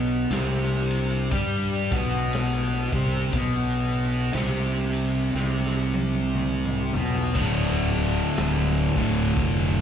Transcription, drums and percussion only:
0.31 snare, ride
0.91 ride
1.31 kick, ride
1.92 kick, snare, ride
2.33 snare, ride
2.92 kick, ride
3.33 kick, ride
3.93 ride
4.33 snare, ride
4.93 ride
5.36 snare
5.66 snare
5.94 high tom
6.14 high tom
6.35 mid tom
6.65 mid tom
6.94 floor tom
7.15 floor tom
7.35 kick, crash
7.95 open hi-hat
8.36 snare, open hi-hat
8.96 kick, open hi-hat
9.36 kick, open hi-hat

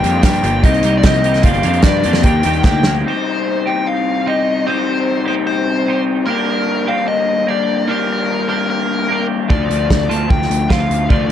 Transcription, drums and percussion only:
0.04 closed hi-hat
0.23 kick, snare, clap, closed hi-hat
0.33 closed hi-hat
0.44 closed hi-hat
0.64 kick, closed hi-hat
0.74 closed hi-hat
0.83 closed hi-hat
1.03 kick, snare, clap, closed hi-hat
1.14 closed hi-hat
1.24 closed hi-hat
1.34 snare, closed hi-hat
1.43 kick, closed hi-hat
1.54 closed hi-hat
1.63 closed hi-hat
1.73 closed hi-hat
1.82 kick, snare, clap, closed hi-hat
2.04 closed hi-hat
2.13 snare, closed hi-hat
2.23 kick, closed hi-hat
2.43 closed hi-hat
2.53 closed hi-hat
2.64 kick, snare, clap
2.83 snare
9.50 kick
9.71 closed hi-hat
9.90 kick, snare
10.11 closed hi-hat
10.30 kick
10.42 snare
10.51 closed hi-hat
10.70 kick, snare
10.91 closed hi-hat
11.10 kick

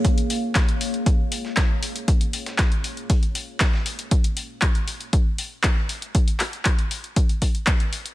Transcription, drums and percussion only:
0.05 kick, closed hi-hat
0.18 closed hi-hat
0.30 closed hi-hat, open hi-hat
0.55 kick, snare, clap, closed hi-hat
0.68 closed hi-hat
0.81 closed hi-hat, open hi-hat
0.94 closed hi-hat
1.06 kick, closed hi-hat
1.32 closed hi-hat, open hi-hat
1.45 snare
1.57 kick, snare, clap, closed hi-hat
1.83 closed hi-hat, open hi-hat
1.96 closed hi-hat
2.08 kick, closed hi-hat
2.21 closed hi-hat
2.33 closed hi-hat, open hi-hat
2.46 snare, closed hi-hat
2.58 kick, snare, clap, closed hi-hat
2.72 closed hi-hat
2.84 closed hi-hat, open hi-hat
2.97 closed hi-hat
3.10 kick, closed hi-hat, open hi-hat
3.23 closed hi-hat
3.35 closed hi-hat, open hi-hat
3.60 kick, snare, clap, closed hi-hat
3.74 snare
3.86 closed hi-hat, open hi-hat
3.99 closed hi-hat
4.11 kick, closed hi-hat
4.24 closed hi-hat
4.37 open hi-hat
4.62 kick, clap, closed hi-hat
4.75 closed hi-hat
4.88 open hi-hat
5.00 closed hi-hat
5.13 kick, closed hi-hat
5.38 open hi-hat
5.63 kick, clap, closed hi-hat
5.89 open hi-hat
6.02 closed hi-hat
6.15 kick, closed hi-hat
6.28 closed hi-hat
6.40 clap, open hi-hat
6.53 closed hi-hat
6.65 kick, clap, closed hi-hat
6.79 closed hi-hat
6.91 open hi-hat
7.04 closed hi-hat
7.16 kick, closed hi-hat
7.29 closed hi-hat
7.42 kick, open hi-hat
7.55 closed hi-hat
7.67 kick, clap, closed hi-hat
7.80 closed hi-hat
7.93 open hi-hat
8.06 closed hi-hat

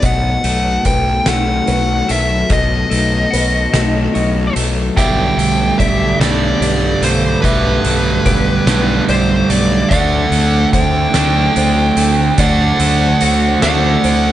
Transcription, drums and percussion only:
0.02 kick, closed hi-hat
0.44 closed hi-hat
0.85 kick, closed hi-hat
1.26 snare, closed hi-hat
1.67 closed hi-hat
2.09 closed hi-hat
2.50 kick, closed hi-hat
2.91 closed hi-hat
3.33 closed hi-hat
3.74 snare, closed hi-hat
4.15 closed hi-hat
4.56 closed hi-hat
4.97 kick, closed hi-hat
5.39 closed hi-hat
5.80 kick, closed hi-hat
6.21 snare, closed hi-hat
6.62 closed hi-hat
7.03 closed hi-hat
7.44 kick, closed hi-hat
7.84 closed hi-hat
8.26 kick, closed hi-hat
8.67 snare, closed hi-hat
9.09 closed hi-hat
9.50 closed hi-hat
9.91 kick, closed hi-hat
10.32 closed hi-hat
10.73 kick, closed hi-hat
11.14 snare, closed hi-hat
11.56 closed hi-hat
11.97 closed hi-hat
12.38 kick, closed hi-hat
12.80 closed hi-hat
13.21 closed hi-hat
13.62 snare, closed hi-hat
14.04 closed hi-hat

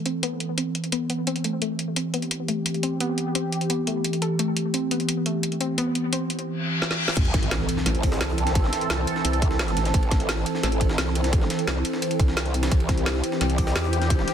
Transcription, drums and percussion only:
0.06 closed hi-hat
0.23 closed hi-hat
0.40 closed hi-hat
0.58 closed hi-hat
0.75 closed hi-hat
0.84 closed hi-hat
0.92 closed hi-hat
1.10 closed hi-hat
1.27 closed hi-hat
1.36 closed hi-hat
1.44 closed hi-hat
1.62 closed hi-hat
1.79 closed hi-hat
1.96 closed hi-hat
2.14 closed hi-hat
2.22 closed hi-hat
2.31 closed hi-hat
2.48 closed hi-hat
2.66 closed hi-hat
2.74 closed hi-hat
2.83 closed hi-hat
3.00 closed hi-hat
3.18 closed hi-hat
3.35 closed hi-hat
3.52 closed hi-hat
3.61 closed hi-hat
3.70 closed hi-hat
3.87 closed hi-hat
4.04 closed hi-hat
4.13 closed hi-hat
4.22 closed hi-hat
4.39 closed hi-hat
4.57 closed hi-hat
4.74 closed hi-hat
4.91 closed hi-hat
5.00 closed hi-hat
5.09 closed hi-hat
5.26 closed hi-hat
5.43 closed hi-hat
5.52 closed hi-hat
5.61 closed hi-hat
5.78 closed hi-hat
5.95 closed hi-hat
6.13 closed hi-hat
6.30 closed hi-hat
6.39 closed hi-hat
6.82 snare
6.91 snare
7.08 snare
7.17 kick, closed hi-hat, crash, ride
7.25 ride
7.34 kick, snare, closed hi-hat, ride
7.43 closed hi-hat
7.51 snare, closed hi-hat, ride
7.60 snare
7.69 closed hi-hat, ride
7.77 snare
7.86 snare, closed hi-hat, ride
7.95 closed hi-hat
8.03 kick, closed hi-hat, ride
8.12 snare
8.21 snare, closed hi-hat, ride
8.29 snare
8.38 closed hi-hat, ride
8.47 snare, closed hi-hat
8.55 kick, closed hi-hat, ride
8.64 snare
8.73 snare, closed hi-hat, ride
8.81 closed hi-hat
8.90 snare, closed hi-hat, ride
9.07 closed hi-hat, ride
9.16 snare
9.25 closed hi-hat, ride
9.33 closed hi-hat, ride
9.42 kick, closed hi-hat, ride
9.51 snare
9.59 snare, closed hi-hat, ride
9.68 snare, closed hi-hat
9.77 snare, closed hi-hat, ride
9.85 snare, closed hi-hat
9.94 kick, closed hi-hat, ride
10.03 ride
10.11 kick, snare, closed hi-hat, ride
10.20 closed hi-hat
10.29 snare, closed hi-hat, ride
10.37 snare
10.46 closed hi-hat, ride
10.55 snare
10.63 snare, closed hi-hat, ride
10.72 closed hi-hat
10.81 kick, closed hi-hat, ride
10.89 snare
10.98 snare, closed hi-hat, ride
11.07 snare
11.15 closed hi-hat, ride
11.24 snare, closed hi-hat
11.33 kick, closed hi-hat, ride
11.41 snare
11.50 snare, closed hi-hat, ride
11.59 closed hi-hat
11.67 snare, closed hi-hat, ride
11.85 closed hi-hat, ride
11.93 snare
12.02 closed hi-hat, ride
12.11 closed hi-hat, ride
12.20 kick, closed hi-hat, ride
12.28 snare
12.37 snare, closed hi-hat, ride
12.46 snare, closed hi-hat
12.54 closed hi-hat, ride
12.63 snare, closed hi-hat, ride
12.72 kick, closed hi-hat, ride
12.80 ride
12.89 kick, snare, closed hi-hat, ride
12.98 closed hi-hat
13.06 snare, closed hi-hat, ride
13.15 snare
13.24 closed hi-hat, ride
13.32 snare
13.41 snare, closed hi-hat, ride
13.50 closed hi-hat
13.58 kick, closed hi-hat, ride
13.67 snare
13.76 snare, closed hi-hat, ride
13.84 snare
13.93 closed hi-hat, ride
14.02 snare, closed hi-hat
14.10 kick, closed hi-hat, ride
14.19 snare
14.28 snare, closed hi-hat, ride

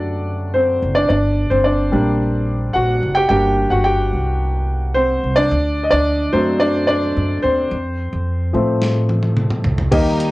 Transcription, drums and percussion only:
8.82 snare
9.09 high tom
9.23 high tom
9.37 mid tom
9.50 mid tom
9.64 floor tom
9.78 floor tom
9.92 kick, closed hi-hat, crash
10.20 closed hi-hat

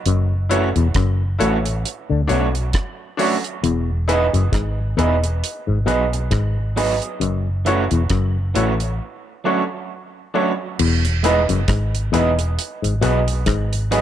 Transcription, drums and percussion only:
0.06 closed hi-hat
0.51 closed hi-hat
0.76 closed hi-hat
0.94 kick, cross-stick, closed hi-hat
1.41 closed hi-hat
1.66 closed hi-hat
1.85 closed hi-hat
2.29 closed hi-hat
2.55 closed hi-hat
2.73 kick, cross-stick, closed hi-hat
3.19 open hi-hat
3.44 closed hi-hat
3.64 closed hi-hat
4.09 closed hi-hat
4.34 closed hi-hat
4.53 kick, cross-stick, closed hi-hat
4.99 closed hi-hat
5.24 closed hi-hat
5.44 closed hi-hat
5.88 closed hi-hat
6.13 closed hi-hat
6.31 kick, cross-stick, closed hi-hat
6.77 open hi-hat
7.02 closed hi-hat
7.21 closed hi-hat
7.66 closed hi-hat
7.91 closed hi-hat
8.10 kick, cross-stick, closed hi-hat
8.55 closed hi-hat
8.80 closed hi-hat
10.79 crash
11.05 closed hi-hat
11.24 closed hi-hat
11.49 closed hi-hat
11.68 kick, cross-stick, closed hi-hat
11.95 closed hi-hat
12.14 closed hi-hat
12.39 closed hi-hat
12.59 closed hi-hat
12.84 closed hi-hat
13.03 closed hi-hat
13.28 closed hi-hat
13.46 kick, cross-stick, closed hi-hat
13.73 closed hi-hat
13.92 closed hi-hat

